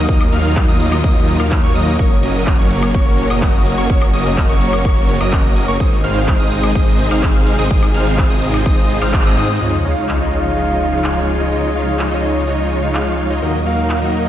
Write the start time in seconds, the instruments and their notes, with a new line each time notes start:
Already playing: string section A#2 D#3 F#3 D#4
0.09 detuned saw bass D#2, supersaw synth F#3 A#3 D#4 A#4 D#5, string section F4, digital synth lead D#6, kick, shaker
0.21 high woodblock, shaker
0.33 detuned saw bass D#2, supersaw synth F#3 A#3 D#4 A#4 F5, digital synth lead F6, open hi-hat, ride, shaker
0.45 shaker
0.56 kick, clap, shaker
0.68 detuned saw bass D#2, supersaw synth F#3 A#3 D#4 A#4 D#5, digital synth lead D#6, shaker
0.80 open hi-hat, ride, shaker
0.92 high woodblock, shaker
1.04 detuned saw bass D#2, supersaw synth F#3 A#3 D#4 A#4 D#5, digital synth lead D#6, kick, shaker
1.28 open hi-hat, ride, shaker
1.40 detuned saw bass D#2, supersaw synth F#3 A#3 D#4 A#4 F5, digital synth lead F6, high woodblock, shaker
1.52 kick, clap, shaker
1.64 detuned saw bass D#2, supersaw synth F#3 A#3 D#4 A#4 C#5, digital synth lead C#6
1.75 detuned saw bass D#2, supersaw synth F#3 A#3 D#4 A#4 D#5, digital synth lead D#6, open hi-hat, ride, shaker
1.88 shaker
1.99 detuned saw bass F#1, string section C#3 C#4 F#4, supersaw synth F#3 A#3 C#4 A#4 C#5, digital synth lead C#6, kick, shaker
2.12 shaker
2.23 detuned saw bass F#1, supersaw synth F#3 A#3 C#4 A#4 D#5, digital synth lead D#6, open hi-hat, ride, shaker
2.35 shaker
2.47 kick, clap, shaker
2.59 detuned saw bass F#1, supersaw synth F#3 A#3 C#4 A#4 C#5, digital synth lead C#6, shaker
2.71 open hi-hat, ride, shaker
2.83 high woodblock, shaker
2.94 detuned saw bass F#1, supersaw synth F#3 A#3 C#4 A#4 C#5, digital synth lead C#6, kick, shaker
3.18 open hi-hat, ride, shaker
3.30 detuned saw bass F#1, supersaw synth F#3 A#3 C#4 A#4 D#5, digital synth lead D#6, high woodblock, shaker
3.42 kick, clap, shaker
3.66 open hi-hat, ride, shaker
3.78 detuned saw bass F#1, supersaw synth F#3 A#3 C#4 A#4 C#5, digital synth lead C#6, shaker
3.90 detuned saw bass F#1, supersaw synth F#3 A#3 C#4 A#4 C#5, digital synth lead C#6, kick, shaker
4.02 high woodblock, shaker
4.14 detuned saw bass F#1, supersaw synth F#3 A#3 C#4 A#4 D#5, digital synth lead D#6, open hi-hat, ride, shaker
4.26 shaker
4.37 kick, clap, shaker
4.49 detuned saw bass F#1, supersaw synth F#3 A#3 C#4 A#4 C#5, digital synth lead C#6, shaker
4.61 open hi-hat, ride, shaker
4.73 high woodblock, shaker
4.85 detuned saw bass F#1, supersaw synth F#3 A#3 C#4 A#4 C#5, digital synth lead C#6, kick, shaker
5.09 open hi-hat, ride, shaker
5.21 detuned saw bass F#1, supersaw synth F#3 A#3 C#4 A#4 D#5, digital synth lead D#6, high woodblock, shaker
5.33 kick, clap, shaker
5.56 open hi-hat, ride, shaker
5.68 detuned saw bass F#1, supersaw synth F#3 A#3 C#4 A#4 C#5, digital synth lead C#6, shaker
5.80 detuned saw bass G#1, string section C3 D#3 G#3 D#4 G#4, supersaw synth G#3 C4 C5, digital synth lead D#6, kick, shaker
5.93 shaker
6.04 detuned saw bass G#1, supersaw synth G#3 C4 D#4 C5 F5, digital synth lead F6, open hi-hat, ride, shaker
6.16 shaker
6.28 kick, clap, shaker
6.40 detuned saw bass G#1, supersaw synth G#3 C4 D#4 C5 D#5, digital synth lead D#6, shaker
6.52 open hi-hat, ride, shaker
6.64 high woodblock, shaker
6.75 detuned saw bass G#1, supersaw synth G#3 C4 D#4 C5 D#5, digital synth lead D#6, kick, shaker
6.99 open hi-hat, ride, shaker
7.11 detuned saw bass G#1, supersaw synth G#3 C4 D#4 C5 F5, digital synth lead F6, high woodblock, shaker
7.23 kick, clap, shaker
7.47 open hi-hat, ride, shaker
7.59 detuned saw bass G#1, supersaw synth G#3 C4 D#4 C5 D#5, digital synth lead D#6, shaker
7.71 detuned saw bass G#1, supersaw synth G#3 C4 D#4 C5, string section F4, kick, shaker
7.83 high woodblock, shaker
7.94 detuned saw bass G#1, supersaw synth G#3 C4 D#4 C5 F5, digital synth lead F6, open hi-hat, ride, shaker
8.07 shaker
8.18 kick, clap, shaker
8.30 detuned saw bass G#1, supersaw synth G#3 C4 D#4 C5 D#5, digital synth lead D#6, shaker
8.42 open hi-hat, ride, shaker
8.54 high woodblock, shaker
8.66 detuned saw bass G#1, supersaw synth G#3 C4 D#4 C5 D#5, digital synth lead D#6, kick, shaker
8.78 shaker
8.90 open hi-hat, ride, shaker
9.02 detuned saw bass G#1, supersaw synth G#3 C4 D#4 C5 F5, digital synth lead F6, clap, high woodblock, shaker
9.13 kick, clap, shaker
9.25 detuned saw bass G#1, supersaw synth G#3 C4 D#4 C5 D#5, digital synth lead D#6, shaker
9.37 detuned saw bass G#2, supersaw synth G#3 C4 D#4 C5 D#5, digital synth lead D#6, open hi-hat, ride, shaker
9.50 shaker
9.61 detuned saw bass C#2, string section C#3 F3 G#3 D#4 F4, supersaw synth G#3 D#4 F4 C#5 D#5, soft synth lead D#5, crash, sub drop, shaker
9.74 shaker
9.85 supersaw synth G#3 D#4 F4 C#5 F5, soft synth lead F5, shaker
9.97 shaker
10.09 clap, shaker
10.21 supersaw synth G#3 D#4 F4 C#5 D#5
10.33 soft synth lead F5, shaker
10.45 shaker
10.56 supersaw synth G#3 D#4 F4 C#5 D#5, shaker
10.81 shaker
10.92 supersaw synth G#3 D#4 F4 C#5 F5, shaker
11.04 soft synth lead G#5, clap, shaker
11.28 shaker
11.40 supersaw synth G#3 D#4 F4 C#5 D#5, shaker
11.52 supersaw synth G#3 D#4 F4 C#5 D#5, soft synth lead D#5, shaker
11.64 shaker
11.75 supersaw synth G#3 D#4 F4 C#5 F5, shaker
11.88 shaker
11.99 soft synth lead C#5, clap, shaker
12.06 soft synth lead D#5
12.11 supersaw synth G#3 D#4 F4 C#5 D#5, soft synth lead C#5
12.24 shaker
12.35 shaker
12.47 supersaw synth G#3 D#4 F4 C#5 D#5, shaker
12.71 shaker
12.83 supersaw synth G#3 D#4 F4 C#5 F5, shaker
12.95 clap, shaker
13.19 shaker
13.30 supersaw synth G#3 D#4 F4 C#5 D#5, shaker
13.42 detuned saw bass D#2, string section A#2 D#3 F#3 D#4 F#4, supersaw synth F#3 A#3 D#4 A#4 D#5, soft synth lead D#5, shaker
13.54 shaker
13.66 supersaw synth F#3 A#3 D#4 A#4 F5, soft synth lead F5, shaker
13.78 shaker
13.90 clap, shaker
14.02 supersaw synth F#3 A#3 D#4 A#4 D#5
14.14 soft synth lead F5, shaker